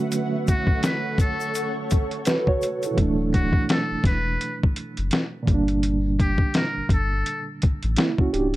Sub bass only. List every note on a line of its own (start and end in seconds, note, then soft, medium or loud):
2.98 3.52 D1 loud
3.91 3.97 E1 soft
4.04 4.38 E1 medium
4.99 5.11 F#1 medium
5.48 6.37 G1 loud
6.77 6.82 G1 soft
6.90 7.23 G1 medium
7.84 7.97 A1 medium
8.34 8.56 C#1 loud